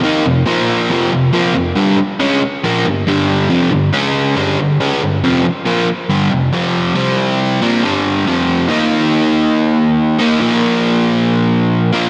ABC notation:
X:1
M:4/4
L:1/8
Q:1/4=139
K:Gm
V:1 name="Overdriven electric guitar" clef=bass
[E,B,E] [F,,C,] [B,,F,B,]2 [F,,C,F,] [F,,C,] [B,,F,B,] [F,,C,] | [G,,D,G,] z [^C,_A,^C] z [B,,F,B,] [G,,D,] [G,,D,G,]2 | [F,,C,F,] [G,,D,] [^C,^G,^C]2 [=G,,D,=G,] [G,,D,] [C,_A,C] [G,,D,] | [F,,C,F,] z [B,,F,B,] z [G,,D,G,] [F,,C,] [F,,C,F,]2 |
[C,G,C]3 [B,,F,B,] [G,,D,G,]2 [F,,C,F,]2 | [E,B,E]6- [E,B,E] [E,B,E] | [B,,F,B,]6- [B,,F,B,] [B,,F,B,] |]